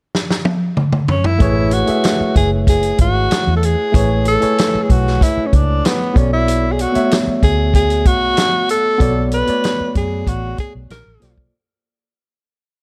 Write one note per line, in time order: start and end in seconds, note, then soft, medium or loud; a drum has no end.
0.15 snare medium
0.31 snare medium
0.45 high tom medium
0.77 mid tom medium
0.93 mid tom medium
1.08 1.27 C#4 medium
1.08 floor tom medium
1.24 1.75 E4 medium
1.24 floor tom medium
1.39 1.82 A1 medium
1.39 1.78 A3 medium
1.39 1.78 E4 medium
1.39 1.79 G#4 medium
1.39 1.79 B4 medium
1.39 1.80 C#5 loud
1.39 kick medium
1.39 closed hi-hat medium
1.71 2.36 F#4 medium
1.71 closed hi-hat medium
1.86 2.90 A3 medium
1.86 2.90 E4 medium
1.86 2.91 G#4 medium
1.86 2.91 B4 medium
1.86 2.92 E5 medium
1.86 muted fingered electric bass stroke soft
1.86 closed hi-hat soft
2.04 snare medium
2.04 closed hi-hat medium
2.20 muted fingered electric bass stroke soft
2.36 2.91 F#1 medium
2.36 2.51 G#4 medium
2.36 kick medium
2.36 closed hi-hat medium
2.67 2.98 G#4 medium
2.67 kick medium
2.67 closed hi-hat medium
2.83 closed hi-hat soft
2.98 3.27 G#1 medium
2.98 3.52 F#4 medium
2.98 kick medium
2.98 closed hi-hat medium
3.31 muted fingered electric bass stroke soft
3.31 snare medium
3.31 closed hi-hat medium
3.47 3.74 E2 medium
3.57 3.66 A4 medium
3.63 4.27 G#4 medium
3.63 closed hi-hat medium
3.92 4.36 A1 medium
3.92 4.32 A3 medium
3.92 4.32 E4 medium
3.92 4.33 G#4 medium
3.92 4.33 B4 medium
3.92 4.33 C#5 medium
3.92 kick loud
3.92 closed hi-hat medium
4.25 4.84 A4 medium
4.25 closed hi-hat medium
4.40 5.43 A3 medium
4.40 5.44 E4 medium
4.40 5.45 B4 medium
4.40 5.45 C#5 medium
4.40 5.44 G#5 medium
4.40 muted fingered electric bass stroke soft
4.40 closed hi-hat soft
4.58 snare loud
4.58 closed hi-hat medium
4.75 muted fingered electric bass stroke soft
4.83 4.93 G#4 medium
4.90 5.17 B1 medium
4.90 5.25 F#4 medium
4.90 kick medium
4.90 closed hi-hat medium
5.07 snare soft
5.21 5.48 E4 medium
5.21 kick medium
5.21 closed hi-hat medium
5.37 muted fingered electric bass stroke soft
5.46 5.57 C#4 medium
5.53 5.80 C#2 medium
5.53 5.88 D4 medium
5.53 kick medium
5.53 closed hi-hat medium
5.85 6.20 B3 medium
5.85 snare medium
5.85 closed hi-hat medium
6.14 6.84 B1 medium
6.14 6.79 B3 medium
6.14 6.79 F#4 medium
6.14 6.80 A4 medium
6.14 6.80 C#5 medium
6.14 6.81 D5 medium
6.14 kick loud
6.14 closed hi-hat medium
6.18 6.33 C#4 medium
6.33 6.73 E4 medium
6.48 closed hi-hat medium
6.72 6.83 G#4 medium
6.79 7.16 F#4 medium
6.79 closed hi-hat medium
6.92 7.97 A3 medium
6.92 7.96 B3 medium
6.92 7.96 F#4 medium
6.92 7.97 C#5 medium
6.92 7.98 E5 medium
6.92 muted fingered electric bass stroke soft
6.92 closed hi-hat soft
7.11 snare medium
7.11 closed hi-hat medium
7.27 muted fingered electric bass stroke soft
7.43 8.06 D2 medium
7.43 7.72 G#4 medium
7.43 kick medium
7.43 closed hi-hat medium
7.74 8.08 G#4 medium
7.74 kick medium
7.74 closed hi-hat medium
7.90 closed hi-hat soft
8.05 8.33 B1 medium
8.05 8.69 F#4 medium
8.05 kick medium
8.05 closed hi-hat medium
8.37 snare medium
8.37 closed hi-hat medium
8.69 9.29 A4 medium
8.69 closed hi-hat medium
8.98 9.42 B1 medium
8.98 9.38 B3 medium
8.98 9.38 F#4 medium
8.98 9.38 A4 medium
8.98 9.39 C#5 medium
8.98 9.39 D5 medium
8.98 kick loud
8.98 closed hi-hat medium
9.31 9.92 B4 medium
9.31 closed hi-hat medium
9.46 10.50 A3 medium
9.46 10.49 B3 medium
9.46 10.50 F#4 medium
9.46 10.51 C#5 medium
9.46 10.51 D5 medium
9.46 muted fingered electric bass stroke soft
9.46 closed hi-hat soft
9.64 snare loud
9.64 closed hi-hat medium
9.80 muted fingered electric bass stroke soft
9.95 10.23 F#2 medium
9.95 10.30 G#4 medium
9.95 kick medium
9.95 closed hi-hat medium
10.27 10.54 A1 medium
10.27 10.59 F#4 medium
10.27 kick medium
10.27 closed hi-hat medium
10.58 10.74 G#4 medium
10.58 muted fingered electric bass stroke soft
10.58 kick medium
10.58 closed hi-hat medium
10.75 10.88 B1 medium
10.90 11.04 A#1 medium
10.90 11.35 A#4 medium
10.90 snare medium
10.90 closed hi-hat medium
11.06 11.20 A1 medium
11.20 11.49 B1 medium
11.20 11.46 A#3 medium
11.20 11.46 F4 medium
11.20 11.47 A4 medium
11.20 11.47 C5 medium
11.20 11.48 D5 medium
11.20 snare soft
11.20 closed hi-hat medium
11.38 kick medium